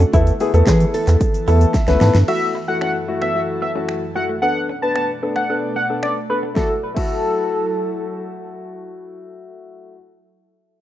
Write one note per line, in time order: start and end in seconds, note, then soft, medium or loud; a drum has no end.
0.00 0.11 D3 medium
0.00 0.11 C#4 medium
0.00 0.11 F#4 medium
0.00 0.15 A4 loud
0.00 closed hi-hat medium
0.00 shaker medium
0.13 0.32 E2 loud
0.13 2.26 E3 medium
0.13 0.31 A3 medium
0.13 2.26 B3 medium
0.13 0.31 B3 medium
0.13 0.69 E4 loud
0.13 0.24 E4 loud
0.13 0.31 E4 medium
0.13 2.26 A4 medium
0.13 0.31 A4 medium
0.13 kick loud
0.13 closed hi-hat medium
0.13 shaker medium
0.27 closed hi-hat medium
0.27 shaker medium
0.27 shaker soft
0.40 0.49 A3 medium
0.40 0.49 B3 medium
0.40 0.49 E4 medium
0.40 0.49 G#4 medium
0.40 muted clean electric guitar stroke soft
0.40 open hi-hat medium
0.40 shaker medium
0.54 0.63 E2 loud
0.54 0.64 A3 medium
0.54 1.15 A3 medium
0.54 1.15 B3 medium
0.54 1.15 E4 medium
0.54 1.15 A4 medium
0.54 closed hi-hat medium
0.54 shaker medium
0.54 shaker soft
0.67 0.85 E3 loud
0.67 0.78 C#4 medium
0.67 0.94 G#4 loud
0.67 kick loud
0.67 snare medium
0.67 clap loud
0.67 closed hi-hat medium
0.67 shaker medium
0.80 muted clean electric guitar stroke soft
0.80 closed hi-hat medium
0.80 shaker medium
0.94 1.97 A4 medium
0.94 open hi-hat medium
0.94 shaker medium
1.07 1.17 E2 medium
1.07 1.18 B3 medium
1.07 clap medium
1.07 closed hi-hat medium
1.07 shaker medium
1.21 kick loud
1.21 closed hi-hat medium
1.21 shaker medium
1.34 closed hi-hat medium
1.34 shaker medium
1.47 1.66 E2 medium
1.47 1.74 A3 medium
1.47 1.74 B3 medium
1.47 1.58 E4 medium
1.47 1.74 E4 medium
1.47 1.74 A4 medium
1.47 open hi-hat medium
1.47 shaker soft
1.61 closed hi-hat medium
1.61 shaker medium
1.61 shaker soft
1.74 1.99 E5 medium
1.74 muted clean electric guitar stroke soft
1.74 kick loud
1.74 snare medium
1.74 closed hi-hat medium
1.74 shaker medium
1.88 1.97 C#2 loud
1.88 2.14 A3 medium
1.88 2.14 B3 medium
1.88 1.98 C#4 medium
1.88 2.14 E4 medium
1.88 2.14 B4 loud
1.88 snare medium
1.88 closed hi-hat medium
1.88 shaker medium
2.01 2.10 G#2 medium
2.01 2.12 B3 medium
2.01 2.26 A5 medium
2.01 snare loud
2.01 open hi-hat medium
2.01 shaker soft
2.15 2.24 G2 medium
2.15 snare loud
2.15 closed hi-hat medium
2.15 shaker medium
2.28 4.40 F#2 medium
2.28 4.40 E3 medium
2.28 2.54 A3 medium
2.28 2.54 E4 medium
2.28 2.39 F#4 medium
2.28 2.54 F#4 medium
2.28 4.40 A4 medium
2.28 2.46 E5 loud
2.28 crash medium
2.42 muted clean electric guitar stroke soft
2.55 2.65 E4 medium
2.68 2.94 A3 medium
2.68 2.94 E4 medium
2.68 2.94 F#4 medium
2.68 2.77 F#5 medium
2.81 2.92 C#4 medium
2.81 2.91 F#5 medium
2.81 finger snap loud
3.08 3.26 A3 medium
3.08 3.26 E4 medium
3.08 3.26 F#4 medium
3.08 muted clean electric guitar stroke soft
3.22 3.32 B3 medium
3.22 3.40 E5 medium
3.22 finger snap medium
3.35 3.61 A3 medium
3.35 3.61 E4 medium
3.35 3.61 F#4 medium
3.35 muted clean electric guitar stroke soft
3.62 3.72 B3 medium
3.62 3.71 E5 medium
3.75 4.01 A3 medium
3.75 3.86 C#4 medium
3.75 4.01 E4 medium
3.75 4.01 F#4 medium
3.89 finger snap loud
3.89 muted clean electric guitar stroke soft
4.15 4.33 A3 medium
4.15 4.26 A3 medium
4.15 4.33 E4 medium
4.15 4.33 F#4 medium
4.15 4.25 F#5 medium
4.29 4.40 A3 medium
4.42 6.54 B2 medium
4.42 6.54 A3 medium
4.42 4.68 B3 medium
4.42 4.53 B3 medium
4.42 4.68 D4 medium
4.42 4.68 A4 medium
4.42 6.54 D5 medium
4.42 4.60 F#5 loud
4.56 muted clean electric guitar stroke soft
4.69 4.80 C#4 medium
4.82 5.08 B3 medium
4.82 5.09 D4 medium
4.82 5.09 B4 medium
4.82 4.91 A5 medium
4.96 5.06 B3 medium
4.96 5.05 A5 medium
4.96 finger snap loud
5.22 5.40 B3 medium
5.22 5.40 D4 medium
5.22 5.40 A4 medium
5.22 muted clean electric guitar stroke soft
5.36 5.46 A3 medium
5.36 5.54 F#5 medium
5.36 finger snap medium
5.49 5.75 B3 medium
5.49 5.76 D4 medium
5.49 5.76 A4 medium
5.76 5.86 A3 medium
5.76 5.85 F#5 medium
5.89 6.16 B3 medium
5.89 6.16 D4 medium
5.89 6.16 A4 medium
6.03 6.13 C#4 medium
6.03 6.12 D5 medium
6.03 finger snap loud
6.16 muted clean electric guitar stroke soft
6.30 6.47 B3 medium
6.30 6.47 D4 medium
6.30 6.47 A4 medium
6.30 6.39 B4 medium
6.43 6.54 B3 medium
6.54 9.55 F#3 medium
6.54 6.70 A3 medium
6.54 6.66 A3 medium
6.54 6.71 E4 medium
6.54 9.55 E4 medium
6.54 6.72 F#4 medium
6.54 6.71 A4 medium
6.54 9.55 A4 medium
6.54 kick loud
6.54 snare medium
6.94 9.93 A3 medium
6.94 7.06 A3 medium
6.94 9.95 E4 medium
6.94 9.97 F#4 medium
6.94 8.13 A4 medium
6.94 kick loud
6.94 crash medium